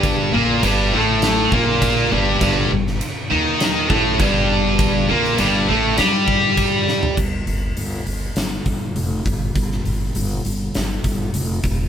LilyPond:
<<
  \new Staff \with { instrumentName = "Distorted electric guitar" } { \clef bass \time 4/4 \key g \minor \tempo 4 = 101 <g, g>8 <bes, bes>8 <g, g>8 <a, a>4 <bes, bes>4 <g, g>8 | <g, g>8 g,8 r8 <ees ees'>4 <a, a>8 <g, g>4~ | <g, g>8 <bes, bes>8 <g, g>8 <a, a>8 <g g'>2 | r1 |
r1 | }
  \new Staff \with { instrumentName = "Distorted electric guitar" } { \clef bass \time 4/4 \key g \minor <g, g>8 <bes, bes>8 <g, g>8 <a, a>4 <bes, bes>4 <g, g>8 | <g, g>8 g,8 r8 <ees ees'>4 <a, a>8 <g, g>4~ | <g, g>8 <bes, bes>8 <g, g>8 <a, a>8 <g g'>2 | r1 |
r1 | }
  \new Staff \with { instrumentName = "Upright bass" } { \clef bass \time 4/4 \key g \minor g,,8 bes,,8 g,,8 a,,4 bes,,4 g,,8 | g,,8 g,,8 r8 ees,4 a,,8 g,,4~ | g,,8 bes,,8 g,,8 a,,8 g,2 | g,,8 g,,8 g,,8 g,,8 g,,8 g,,8 f,,8 g,,8 |
g,,8 g,,8 g,,8 g,,8 g,,8 g,,8 f,,8 e,,8 | }
  \new DrumStaff \with { instrumentName = "Drums" } \drummode { \time 4/4 <cymc bd>4 cymc4 <cymc sn>8 bd8 <cymc bd>4 | <cymc bd>8. sn16 cymc4 <cymc sn>8 bd8 <cymc bd>4 | <cymc bd>8. sn16 cymc4 <cymc sn>8 bd8 <cymc bd>8 sn16 tomfh16 | <cymc bd>8 hho8 hho8 hho8 <hho sn>8 <hho bd>8 hho8 <hho bd>8 |
<hho bd>16 sn16 hho8 hho8 hho8 <hho sn>8 <hho bd>8 hho8 <hho bd>8 | }
>>